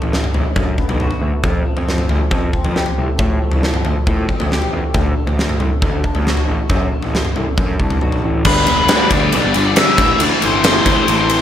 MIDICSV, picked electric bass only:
0, 0, Header, 1, 2, 480
1, 0, Start_track
1, 0, Key_signature, 1, "major"
1, 0, Tempo, 437637
1, 1589, Time_signature, 4, 2, 24, 8
1, 12520, End_track
2, 0, Start_track
2, 0, Title_t, "Picked electric bass"
2, 0, Program_c, 0, 34
2, 22, Note_on_c, 0, 33, 71
2, 218, Note_off_c, 0, 33, 0
2, 380, Note_on_c, 0, 35, 81
2, 481, Note_off_c, 0, 35, 0
2, 615, Note_on_c, 0, 42, 84
2, 814, Note_off_c, 0, 42, 0
2, 974, Note_on_c, 0, 35, 72
2, 1173, Note_off_c, 0, 35, 0
2, 1332, Note_on_c, 0, 38, 79
2, 1436, Note_off_c, 0, 38, 0
2, 1577, Note_on_c, 0, 41, 84
2, 1775, Note_off_c, 0, 41, 0
2, 1944, Note_on_c, 0, 41, 82
2, 2236, Note_off_c, 0, 41, 0
2, 2310, Note_on_c, 0, 38, 71
2, 2406, Note_off_c, 0, 38, 0
2, 2542, Note_on_c, 0, 41, 88
2, 2738, Note_off_c, 0, 41, 0
2, 2903, Note_on_c, 0, 41, 83
2, 3098, Note_off_c, 0, 41, 0
2, 3270, Note_on_c, 0, 36, 77
2, 3366, Note_off_c, 0, 36, 0
2, 3501, Note_on_c, 0, 45, 89
2, 3697, Note_off_c, 0, 45, 0
2, 3860, Note_on_c, 0, 36, 73
2, 4057, Note_off_c, 0, 36, 0
2, 4226, Note_on_c, 0, 38, 75
2, 4324, Note_off_c, 0, 38, 0
2, 4467, Note_on_c, 0, 45, 82
2, 4661, Note_off_c, 0, 45, 0
2, 4829, Note_on_c, 0, 38, 73
2, 5023, Note_off_c, 0, 38, 0
2, 5190, Note_on_c, 0, 40, 79
2, 5287, Note_off_c, 0, 40, 0
2, 5423, Note_on_c, 0, 38, 86
2, 5620, Note_off_c, 0, 38, 0
2, 5778, Note_on_c, 0, 38, 81
2, 6074, Note_off_c, 0, 38, 0
2, 6142, Note_on_c, 0, 36, 78
2, 6243, Note_off_c, 0, 36, 0
2, 6384, Note_on_c, 0, 38, 87
2, 6581, Note_off_c, 0, 38, 0
2, 6746, Note_on_c, 0, 38, 80
2, 6943, Note_off_c, 0, 38, 0
2, 7113, Note_on_c, 0, 33, 81
2, 7211, Note_off_c, 0, 33, 0
2, 7347, Note_on_c, 0, 42, 94
2, 7544, Note_off_c, 0, 42, 0
2, 7716, Note_on_c, 0, 33, 65
2, 7910, Note_off_c, 0, 33, 0
2, 8074, Note_on_c, 0, 36, 72
2, 8172, Note_off_c, 0, 36, 0
2, 8315, Note_on_c, 0, 42, 71
2, 8510, Note_off_c, 0, 42, 0
2, 8551, Note_on_c, 0, 36, 72
2, 8771, Note_off_c, 0, 36, 0
2, 8795, Note_on_c, 0, 35, 67
2, 9013, Note_off_c, 0, 35, 0
2, 9036, Note_on_c, 0, 33, 72
2, 9254, Note_off_c, 0, 33, 0
2, 9267, Note_on_c, 0, 31, 88
2, 9465, Note_off_c, 0, 31, 0
2, 9522, Note_on_c, 0, 28, 85
2, 9714, Note_off_c, 0, 28, 0
2, 9759, Note_on_c, 0, 38, 112
2, 9952, Note_off_c, 0, 38, 0
2, 9993, Note_on_c, 0, 38, 101
2, 10188, Note_off_c, 0, 38, 0
2, 10250, Note_on_c, 0, 35, 103
2, 10342, Note_off_c, 0, 35, 0
2, 10364, Note_on_c, 0, 31, 93
2, 10458, Note_off_c, 0, 31, 0
2, 10478, Note_on_c, 0, 31, 102
2, 10671, Note_off_c, 0, 31, 0
2, 10947, Note_on_c, 0, 33, 88
2, 11048, Note_off_c, 0, 33, 0
2, 11197, Note_on_c, 0, 38, 100
2, 11293, Note_off_c, 0, 38, 0
2, 11445, Note_on_c, 0, 31, 75
2, 11827, Note_off_c, 0, 31, 0
2, 11915, Note_on_c, 0, 38, 96
2, 12012, Note_off_c, 0, 38, 0
2, 12158, Note_on_c, 0, 33, 101
2, 12520, Note_off_c, 0, 33, 0
2, 12520, End_track
0, 0, End_of_file